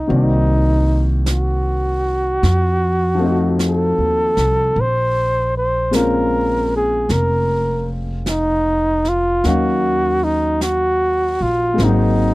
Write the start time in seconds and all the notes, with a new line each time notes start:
0.07 C2 D#3 A#3 C4 F#4 D5, brush sweep
0.15 D#4
1.26 brush sweep, snare, hi-hat pedal
1.31 F#4
2.43 F2, brush sweep, snare
3.15 F3 A3
3.20 C4 D#4
3.25 F#4
3.59 brush sweep, snare, hi-hat pedal
3.67 A4
3.98 D#2
4.37 C2, snare
4.75 A#1, brush sweep
4.81 C5
5.57 C5
5.91 G#3 A#3 C4, brush sweep, snare, hi-hat pedal
5.95 C#4 F4 A#4
6.76 G#4
7.09 F1 A#4, brush sweep, snare
8.26 brush sweep, snare, hi-hat pedal
8.30 D#4
9.05 snare
9.09 F4
9.44 D#2 F#3 A#3 C#4 D#4 F#4 F5, brush sweep, snare
10.24 D#4
10.61 F#4, brush sweep, snare, hi-hat pedal
11.41 A#1 F4
11.74 G#3 A#3
11.78 G#1 C4 D#4, brush sweep, snare
11.84 F#3 D#4